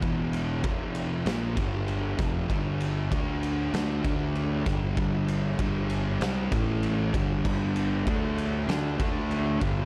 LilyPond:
<<
  \new Staff \with { instrumentName = "Distorted electric guitar" } { \clef bass \time 4/4 \key d \mixolydian \tempo 4 = 97 r1 | r1 | r1 | <g, d g>4 <d a d'>4 <d a d'>8 <d a d'>4 <g, d g>8 | }
  \new Staff \with { instrumentName = "Distorted electric guitar" } { \clef bass \time 4/4 \key d \mixolydian <e, b, e>4 <f, c f>4 <ais, eis ais>8 <g, d g>4 <f, c f>8 | <g, d g>4 <d a d'>4 <d a d'>8 <d a d'>4 <g, d g>8 | <g, d g>4 <g, d g>4 <c g c'>8 <a, e a>4 <g, d g>8 | <g, d g>4 <d a d'>4 <d a d'>8 <d a d'>4 <g, d g>8 | }
  \new Staff \with { instrumentName = "Distorted electric guitar" } { \clef bass \time 4/4 \key d \mixolydian <e, b, e>4 <f, c f>4 <ais, eis ais>8 <g, d g>4 <f, c f>8 | <g, d g>4 <d a d'>4 <d a d'>8 <d a d'>4 <g, d g>8 | <g, d g>4 <g, d g>4 <c g c'>8 <a, e a>4 <g, d g>8 | <g, d g>4 <d a d'>4 <d a d'>8 <d a d'>4 <g, d g>8 | }
  \new Staff \with { instrumentName = "Fingered electric bass" } { \clef bass \time 4/4 \key d \mixolydian e,,4 f,,4 ais,,8 g,,4 f,,8 | g,,4 d,4 d,8 d,4 g,,8 | g,,4 g,,4 c,8 a,,4 g,,8 | g,,4 d,4 d,8 d,4 g,,8 | }
  \new DrumStaff \with { instrumentName = "Drums" } \drummode { \time 4/4 <bd cymr>8 cymr8 <bd cymr>8 cymr8 <cymr sn>8 <bd cymr>8 cymr8 <bd cymr sn>8 | <bd cymr>8 cymr8 <bd cymr>8 cymr8 <cymr sn>8 <bd cymr>8 cymr8 <bd cymr sn>8 | <bd cymr>8 cymr8 <bd cymr>8 cymr8 <cymr sn>8 <bd cymr>8 cymr8 <bd cymr>8 | <cymc bd>8 cymr8 <bd cymr>8 cymr8 <cymr sn>8 <bd cymr>8 cymr8 <bd cymr>8 | }
>>